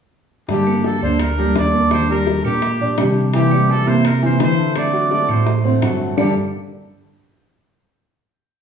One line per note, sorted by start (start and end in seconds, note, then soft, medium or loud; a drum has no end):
0.48 0.98 G2 medium
0.48 0.83 D3 medium
0.48 0.83 G3 medium
0.48 0.64 G3 medium
0.48 0.83 A#3 medium
0.48 0.84 D4 medium
0.48 0.87 G4 medium
0.48 0.64 G4 medium
0.48 0.85 A4 medium
0.48 high bongo medium
0.67 0.96 A#3 medium
0.67 claves medium
0.84 1.01 G3 soft
0.84 1.02 A#3 medium
0.84 1.01 D4 soft
0.84 1.03 A4 medium
0.84 1.01 A4 medium
0.84 high bongo medium
1.02 1.52 D2 medium
1.02 1.20 G3 medium
1.02 1.20 A#3 medium
1.02 1.20 D4 medium
1.02 1.32 D4 medium
1.02 1.19 A4 medium
1.02 1.19 C5 medium
1.02 1.32 D5 medium
1.20 1.59 A#4 loud
1.20 muted steel-string acoustic guitar stroke medium
1.20 high bongo medium
1.20 claves medium
1.38 1.67 G3 medium
1.38 1.54 G3 medium
1.38 1.55 A#3 medium
1.38 1.55 D4 medium
1.38 1.67 G4 medium
1.38 1.55 A4 medium
1.55 2.39 D#2 medium
1.55 1.90 G3 soft
1.55 1.91 A#3 soft
1.55 1.91 D4 medium
1.55 1.91 A4 medium
1.55 1.92 D5 loud
1.55 high bongo medium
1.55 low bongo medium
1.74 2.03 A#3 medium
1.91 2.25 D#3 medium
1.91 2.26 G3 medium
1.91 2.27 D4 medium
1.91 2.27 G4 medium
1.91 2.09 C5 loud
1.91 high bongo medium
1.91 claves medium
2.09 2.39 G3 medium
2.09 2.39 G4 medium
2.09 2.43 A#4 loud
2.09 high bongo soft
2.26 2.44 D#3 soft
2.26 2.44 G3 soft
2.26 2.44 D4 medium
2.26 2.42 G4 medium
2.26 high bongo medium
2.44 2.78 A#2 medium
2.44 2.61 G3 medium
2.44 2.75 A#3 medium
2.44 2.62 D4 medium
2.44 2.61 G4 medium
2.44 3.12 G4 medium
2.44 2.75 A#4 medium
2.44 high bongo soft
2.44 claves medium
2.62 muted steel-string acoustic guitar stroke medium
2.62 high bongo medium
2.80 2.97 A#2 medium
2.80 2.97 G3 medium
2.80 2.95 D4 medium
2.80 2.98 D4 medium
2.80 2.97 G4 medium
2.80 2.95 D5 medium
2.98 3.81 C3 medium
2.98 3.33 D#3 soft
2.98 3.33 G3 soft
2.98 3.28 G3 medium
2.98 3.34 D4 medium
2.98 3.28 G4 medium
2.98 3.34 G4 medium
2.98 high bongo medium
2.98 low bongo medium
2.98 claves medium
3.16 high bongo soft
3.33 3.68 C3 medium
3.33 3.48 E3 medium
3.33 3.67 E3 medium
3.33 3.68 A#3 medium
3.33 3.69 C4 medium
3.33 3.49 E4 medium
3.33 3.70 E4 medium
3.33 3.72 G4 medium
3.33 high bongo medium
3.51 3.81 G3 medium
3.51 3.81 G4 medium
3.51 claves medium
3.69 3.86 E3 medium
3.69 3.86 A#3 medium
3.69 3.86 C4 medium
3.69 3.85 E4 medium
3.69 3.90 A4 medium
3.69 high bongo medium
3.86 4.37 C3 medium
3.86 4.03 E3 medium
3.86 4.16 A#3 medium
3.86 4.04 A#3 medium
3.86 4.04 C4 medium
3.86 4.04 E4 medium
3.86 4.17 A#4 medium
3.86 4.08 C5 medium
4.04 4.24 A#4 medium
4.04 muted steel-string acoustic guitar stroke medium
4.04 high bongo medium
4.04 claves medium
4.22 4.52 E3 medium
4.22 4.39 E3 medium
4.22 4.39 A#3 medium
4.22 4.40 C4 medium
4.22 4.39 E4 medium
4.22 4.52 E4 medium
4.22 4.41 C5 medium
4.40 5.23 D3 medium
4.40 4.75 E3 medium
4.40 4.75 A#3 medium
4.40 4.76 C4 medium
4.40 4.76 E4 medium
4.40 4.79 C5 loud
4.40 high bongo medium
4.40 low bongo medium
4.58 4.88 A4 medium
4.75 5.10 D3 medium
4.75 5.11 A3 medium
4.75 5.11 C4 medium
4.75 5.12 F#4 medium
4.75 5.12 D5 loud
4.75 high bongo medium
4.75 claves medium
4.93 5.23 F#3 medium
4.93 5.23 F#4 medium
4.93 high bongo soft
5.11 5.28 D3 soft
5.11 5.29 A3 soft
5.11 5.29 C4 medium
5.11 5.28 F#4 medium
5.11 5.32 D5 medium
5.11 high bongo medium
5.29 5.62 A2 medium
5.29 5.58 A3 medium
5.29 5.46 A3 medium
5.29 5.46 C4 medium
5.29 5.46 F#4 medium
5.29 5.58 A4 medium
5.29 5.65 C5 medium
5.29 high bongo soft
5.29 claves medium
5.46 muted steel-string acoustic guitar stroke medium
5.46 high bongo medium
5.64 5.81 A2 medium
5.64 5.81 A3 medium
5.64 5.79 C4 medium
5.64 5.82 C4 medium
5.64 5.81 F#4 medium
5.64 5.79 C5 medium
5.81 6.14 G2 medium
5.81 6.16 D3 soft
5.81 6.11 F#3 medium
5.81 6.17 A3 soft
5.81 6.18 C4 medium
5.81 6.12 F#4 medium
5.81 6.18 F#4 medium
5.81 high bongo medium
5.81 low bongo medium
5.81 claves medium
6.00 high bongo soft
6.17 6.32 G2 medium
6.17 6.34 G2 medium
6.17 6.32 D3 medium
6.17 6.34 G3 medium
6.17 6.32 G3 medium
6.17 6.32 A#3 medium
6.17 6.34 D4 medium
6.17 6.32 D4 medium
6.17 6.34 G4 medium
6.17 6.35 G4 medium
6.17 6.35 A4 medium
6.17 6.33 A4 medium
6.17 6.35 A#4 medium
6.17 6.35 D5 medium
6.17 low bongo medium
6.17 claves medium